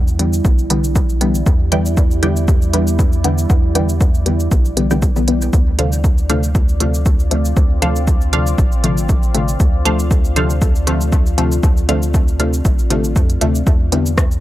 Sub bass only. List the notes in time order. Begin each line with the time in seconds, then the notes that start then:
Already playing: E2
0.45 B1
1.46 E2
3.50 E2
4.52 B1
5.53 D2
8.58 A1
9.60 D2
12.65 A1
13.16 F2
13.41 D2
13.67 E2